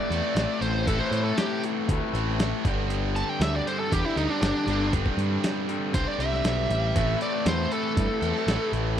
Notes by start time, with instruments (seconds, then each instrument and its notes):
Already playing: overdriven electric guitar A2 E3 A3, distorted electric guitar E3 C4 E4, lead electric guitar D5
0.10 picked electric bass E2, distorted electric guitar E3 C4 E4 A4, closed hi-hat
0.14 distorted electric guitar A2
0.35 picked electric bass A1, distorted electric guitar A2 E3 C4 E4 A4, snare, closed hi-hat
0.61 picked electric bass A1, lead electric guitar C5, closed hi-hat
0.86 overdriven electric guitar A2 E3 A3, distorted electric guitar A2 E3 C4 E4 A4, lead electric guitar A4, kick, closed hi-hat
1.00 lead electric guitar C5
1.11 picked electric bass A2, closed hi-hat
1.24 lead electric guitar A4
1.38 lead electric guitar G4, snare, closed hi-hat
1.64 closed hi-hat
1.88 picked electric bass D2, overdriven electric guitar A2 E3 A3, kick, closed hi-hat
2.13 picked electric bass A1, distorted electric guitar A2 E3 C4 E4 A4, closed hi-hat
2.39 distorted electric guitar A2 E3 C4 E4 A4, snare, closed hi-hat
2.64 picked electric bass G1, overdriven electric guitar G2 D3 G3, distorted electric guitar G2 D3 G3 C4 D4 G4, kick, closed hi-hat
2.90 closed hi-hat
3.16 lead electric guitar A5, closed hi-hat
3.29 lead electric guitar G5
3.40 picked electric bass D2, lead electric guitar E5, snare, closed hi-hat
3.56 lead electric guitar D5
3.66 overdriven electric guitar G2 D3 G3, lead electric guitar C5, closed hi-hat
3.79 lead electric guitar A4
3.91 picked electric bass E2, distorted electric guitar G2 D3 G3 C4 D4 G4, lead electric guitar G4, kick, closed hi-hat
4.06 lead electric guitar E4
4.16 picked electric bass D2, distorted electric guitar G2 D3 G3 C4 D4 G4, lead electric guitar D#4, closed hi-hat
4.30 lead electric guitar D4
4.41 picked electric bass G1, lead electric guitar D4, snare, closed hi-hat
4.66 picked electric bass G1, overdriven electric guitar G2 D3 G3, distorted electric guitar G2 D3 G3 C4, closed hi-hat
4.70 distorted electric guitar D4 G4
4.93 kick, closed hi-hat
5.06 kick
5.17 picked electric bass G2, closed hi-hat
5.44 snare, closed hi-hat
5.68 overdriven electric guitar G2 D3 G3, closed hi-hat
5.94 picked electric bass C2, distorted electric guitar G2 D3 G3 C4 D4 G4, lead electric guitar C5, kick, closed hi-hat
6.08 lead electric guitar D5
6.18 picked electric bass C2, distorted electric guitar G2 D3 G3 C4 D4 G4, lead electric guitar E5, closed hi-hat
6.33 snare
6.44 picked electric bass B1, snare, closed hi-hat
6.70 picked electric bass A1, closed hi-hat
6.94 picked electric bass A1, distorted electric guitar A2 E3 C4 E4 A4, overdriven electric guitar A2 E3 A3, tonewheel organ C4 E4 G4 A4, kick, closed hi-hat
7.21 lead electric guitar D5, closed hi-hat
7.46 picked electric bass E2, lead electric guitar C5, snare, closed hi-hat
7.72 lead electric guitar A4, closed hi-hat
7.97 picked electric bass G2, overdriven electric guitar A2 E3 A3, kick, closed hi-hat
8.21 picked electric bass E2, distorted electric guitar A2 E3 C4 E4 A4, closed hi-hat
8.36 snare
8.46 picked electric bass A1, distorted electric guitar A2 E3 C4 E4 A4, snare, closed hi-hat
8.72 picked electric bass A1, closed hi-hat